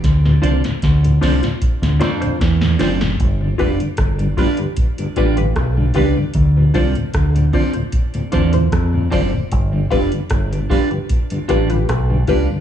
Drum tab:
HH |x-xxxxoxxxxxx-o-|x-oxxxoxxxxxx-o-|x-oxxxoxxxxxx-o-|x-oxxxoxxxxxx-o-|
SD |oo-oo-oo-oo-oooo|----r-------r---|----r-------r---|----r-------r---|
BD |o---o---o---o---|o-o-o-o-o-o-o-o-|o-o-o-o-o-o-o-o-|o-o-o-o-o-o-o-o-|